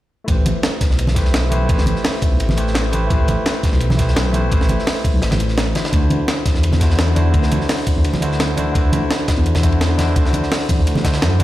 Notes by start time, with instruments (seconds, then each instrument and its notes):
0.24 detuned saw bass A1, tine electric piano A3 E4 G4, kick, closed hi-hat, ride
0.30 tine electric piano B4 C5
0.46 closed hi-hat, ride, high conga
0.63 snare, closed hi-hat, ride
0.81 kick, snare, closed hi-hat, ride
0.90 detuned saw bass B1, snare
0.99 closed hi-hat, ride
1.07 snare, high conga
1.15 tine electric piano A3 E4 G4 B4 C5, kick, snare, closed hi-hat, ride
1.25 snare
1.34 snare, closed hi-hat, ride
1.50 tine electric piano A3 E4 G4 B4 C5, closed hi-hat, ride, high conga
1.66 detuned saw bass A1, tine electric piano A3 E4 G4, kick, closed hi-hat, ride
1.71 tine electric piano B4 C5
1.78 snare
1.86 closed hi-hat, ride, high conga
1.96 snare
2.04 snare, closed hi-hat, open hi-hat
2.14 ride
2.22 kick, closed hi-hat, ride
2.31 detuned saw bass B1
2.40 detuned saw bass A1, closed hi-hat, ride
2.49 snare, high conga
2.56 tine electric piano A3 E4 G4 B4 C5, closed hi-hat, ride
2.67 snare
2.75 snare, closed hi-hat, ride
2.91 tine electric piano A3 E4 G4 B4 C5, closed hi-hat, ride, high conga
3.07 detuned saw bass A1, tine electric piano A3 E4 G4, kick, closed hi-hat, ride
3.12 tine electric piano B4 C5
3.28 closed hi-hat, ride, high conga
3.46 snare, closed hi-hat, ride
3.63 kick, snare, closed hi-hat, ride
3.72 detuned saw bass B1, snare
3.80 closed hi-hat, ride
3.90 snare, high conga
3.97 tine electric piano A3 E4 G4 B4 C5, kick, snare, closed hi-hat, ride
4.08 snare
4.16 snare, closed hi-hat, ride
4.32 tine electric piano A3 E4 G4 B4 C5, closed hi-hat, ride, high conga
4.48 detuned saw bass A1, tine electric piano A3 E4 G4, kick, closed hi-hat
4.52 tine electric piano B4 C5, ride
4.61 snare
4.69 closed hi-hat, ride, high conga
4.79 snare
4.87 snare, closed hi-hat, open hi-hat
4.96 ride
5.04 kick, closed hi-hat, ride
5.14 detuned saw bass B1
5.22 detuned saw bass A1, snare, closed hi-hat, ride
5.31 snare, ride, high conga
5.40 closed hi-hat, ride
5.48 snare
5.58 snare, closed hi-hat, ride
5.74 tine electric piano D3 D4 E4 F#4 C5, snare, closed hi-hat, ride, high conga
5.85 snare, ride
5.90 detuned saw bass D2, tine electric piano D3 D4 E4, kick, closed hi-hat, ride
5.95 tine electric piano F#4 C5
6.10 closed hi-hat, ride, high conga
6.28 snare, closed hi-hat, ride
6.46 kick, snare, closed hi-hat, ride
6.54 detuned saw bass E2, snare
6.63 closed hi-hat, ride
6.72 snare, high conga
6.79 tine electric piano D3 D4 E4 F#4 C5, kick, snare, closed hi-hat, ride
6.90 snare
6.99 snare, closed hi-hat, ride
7.14 tine electric piano D3 D4 E4 F#4 C5, closed hi-hat, ride, high conga
7.30 detuned saw bass D2, tine electric piano D3 D4 E4, kick, closed hi-hat, ride
7.36 tine electric piano F#4 C5
7.43 snare
7.52 closed hi-hat, ride, high conga
7.61 snare
7.69 snare, closed hi-hat, open hi-hat
7.78 ride
7.86 kick, closed hi-hat, ride
7.96 detuned saw bass E2
8.04 detuned saw bass D2, closed hi-hat, ride
8.13 snare, high conga
8.20 tine electric piano D3 D4 E4 F#4 C5, closed hi-hat, ride
8.32 snare
8.40 snare, closed hi-hat, ride
8.56 tine electric piano D3 D4 E4 F#4 C5, closed hi-hat, ride, high conga
8.72 detuned saw bass D2, tine electric piano D3 D4 E4, kick, closed hi-hat, ride
8.77 tine electric piano F#4 C5
8.93 closed hi-hat, ride, high conga
9.11 snare, closed hi-hat, ride
9.28 kick, snare, closed hi-hat, ride
9.37 detuned saw bass E2
9.46 closed hi-hat, ride
9.55 snare, ride, high conga
9.61 tine electric piano D3 D4 E4 F#4 C5, kick, closed hi-hat
9.72 ride
9.81 snare, closed hi-hat, ride
9.97 tine electric piano D3 D4 E4 F#4 C5, snare, closed hi-hat, ride, high conga
10.13 detuned saw bass D2, tine electric piano D3 D4 E4, kick, closed hi-hat, ride
10.18 tine electric piano F#4 C5
10.25 snare
10.33 closed hi-hat, ride, high conga
10.43 snare
10.52 snare, closed hi-hat, open hi-hat
10.61 ride
10.69 kick, closed hi-hat, ride, high conga
10.78 detuned saw bass E2
10.87 detuned saw bass D2, closed hi-hat, ride
10.95 snare, high conga
11.03 tine electric piano D3 D4 E4 F#4 C5, kick, snare, closed hi-hat, ride
11.13 snare, ride
11.22 detuned saw bass F#2, snare, closed hi-hat, ride
11.38 tine electric piano D3 D4 E4, closed hi-hat, ride, high conga